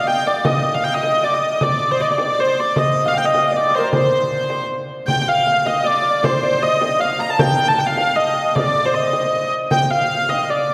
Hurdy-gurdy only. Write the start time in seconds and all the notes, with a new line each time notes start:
0.07 G5
0.27 D5
0.45 D#5
0.75 F5
0.84 G5
0.94 D#5
1.24 D5
1.34 D#5
1.63 D5
1.91 C5
2.00 D5 D#5
2.11 D5
2.40 C5
2.60 D5
2.78 D#5
3.08 F5
3.18 G5
3.26 D#5
3.56 D5
3.75 A#4 C5
3.84 C5
3.92 C5
5.07 G5
5.22 G5
5.29 F5
5.66 D#5
5.86 D5
6.25 C5
6.63 D#5
7.01 F5
7.20 A#5
7.30 A5
7.40 G5
7.68 A5
7.78 G5
7.87 F5
8.16 D#5
8.55 D5
8.85 C5
8.94 D#5
9.71 G5
9.84 G5
9.90 F5
10.29 D#5
10.43 D#5
10.50 D5